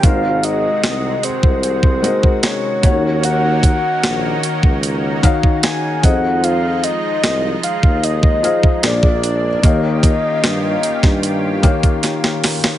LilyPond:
<<
  \new Staff \with { instrumentName = "Soft synth lead" } { \time 4/4 \key ees \dorian \tempo 4 = 75 f''8 ees''4 c''8 c''4 des''4 | ges''8 ges''4 r4. aes''8 ges''8 | f''8 ees''4 f''8 ees''4 d''4 | ees''2. r4 | }
  \new Staff \with { instrumentName = "Felt piano" } { \time 4/4 \key ees \dorian <aes ees' ges' bes' c''>4. r4 <aes ees' ges' bes' ees''>4 <ees ees' ges' des'' ges''>8~ | <ees ees' ges' des'' ges''>4 r4. <ees ees' ges' des'' f''>4 <f ees' aes' c'' ees''>8~ | <f ees' aes' c'' ees''>4 r4. <f ees' aes' c'' f''>8 <bes, bes aes' c'' d''>4 | <ees bes g' des'' f''>4. r4 <ees bes g' des'' f''>4 r8 | }
  \new Staff \with { instrumentName = "Analog synth pad" } { \time 4/4 \key ees \dorian << { ges'1~ | ges'2.~ ges'8 ees'8~ | ees'2. d'4 | g'1 | } \\ { <c aes>2.~ <c aes>8 <ees bes des' ees'>8~ | <ees bes des' ees'>2.~ <ees bes des' ees'>8 <f aes>8~ | <f aes>2. bes4 | <ees des' f'>1 | } >> }
  \new Staff \with { instrumentName = "Tuba" } { \clef bass \time 4/4 \key ees \dorian aes,,4 c,8 r16 c,4 r8. ees,8~ | ees,4 bes,,8 r16 des,4 r8. f,8~ | f,4 c,8 r16 ees,4 r16 bes,,4 | ees,8. r16 g,8 r16 g,4 r4 r16 | }
  \new DrumStaff \with { instrumentName = "Drums" } \drummode { \time 4/4 <hh bd>8 hh8 <hh sn>8 hh16 bd16 hh16 bd16 hh16 bd16 <hh sn>8 <hh bd>8 | hh8 <hh bd>8 <hh sn>8 hh16 bd16 hh8 <hh bd>16 bd16 <hh sn>8 <hh bd>8 | hh8 hh8 <hh sn>8 hh16 bd16 hh16 bd16 hh16 bd16 <hh sn>16 bd16 hh8 | <hh bd>8 <hh bd>8 <hh sn>8 hh16 <bd sn>16 hh8 <hh bd>16 <hh bd>16 <hh sn>16 sn16 <hho sn>16 sn16 | }
>>